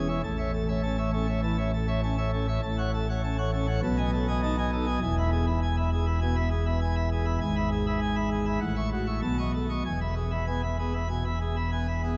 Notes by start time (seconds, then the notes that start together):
Already playing: E1 E2
0.08 C#5 E5
0.23 A1 A2 A5
0.38 C#5 E5
0.53 A4
0.68 C#5 E5
0.83 C#4 A5
0.98 C#5 E5
1.13 C#4 A4
1.27 C#5 E5
1.43 E3 A5
1.58 C#5 E5
1.73 A4
1.88 C#5 E5
2.03 C#4 A5
2.18 C#5 E5
2.33 C#4 A4
2.48 C#5 E5
2.63 A1 A2 A5
2.78 C#5 F#5
2.94 A4
3.09 C#5 F#5
3.23 C#4 A5
3.38 C#5 F#5
3.52 C#4 A4
3.67 C#5 F#5
3.82 B1 B2 A5
3.97 D#5 G#5
4.13 A4
4.28 D#5 G#5
4.42 D#4 A5
4.58 D#5 G#5
4.72 D#4 A4
4.86 D#5 G#5
5.01 E1 E2 G#5
5.18 E5 B5
5.32 G#4
5.47 E5 B5
5.62 G#5
5.77 E5 B5
5.92 G#4
6.06 E5 B5
6.21 B2 G#5
6.35 E5 B5
6.51 G#4
6.66 E5 B5
6.81 G#5
6.95 E5 B5
7.11 G#4
7.25 E5 B5
7.41 G#1 G#2 G#5
7.56 E5 B5
7.72 G#4
7.86 E5 B5
8.01 G#5
8.16 E5 B5
8.31 G#4
8.46 E5 B5
8.60 A1 A2 F#5
8.76 E5 C#6
8.92 F#4
9.07 E5 C#6
9.22 B1 B2 A5
9.38 D#5 C#6
9.54 A4
9.69 D#5 C#6
9.85 E1 E2 G#5
10.01 E5 B5
10.16 G#4
10.30 E5 B5
10.47 B3 G#5
10.63 E5 B5
10.78 B3 G#4
10.94 E5 B5
11.08 B2 G#5
11.25 E5 B5
11.41 G#4
11.56 E5 B5
11.72 B3 G#5
11.87 E5 B5
12.02 B3 G#4